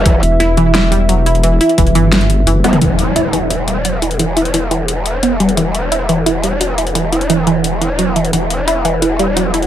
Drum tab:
HH |x-x-x-x-x-x-x-xx|x-xxxxx-xxx-x-xx|x-x-x-x-x-x-x-xx|x-xxx-x-x-x-x-xx|
SD |----o---o-------|--------o-------|----------------|----------------|
T1 |----------------|--------------o-|----------------|----------------|
T2 |----------------|---------------o|----------------|----------------|
BD |o---------------|----o-----------|----------------|----------------|

HH |x-x-x-x-x-x-x-xx|x-xxx-x-x-x-x-xx|x-x-x-x-x-x-x-xx|
SD |----------------|----------------|----------------|
T1 |----------------|----------------|----------------|
T2 |----------------|----------------|----------------|
BD |----------------|----------------|----------------|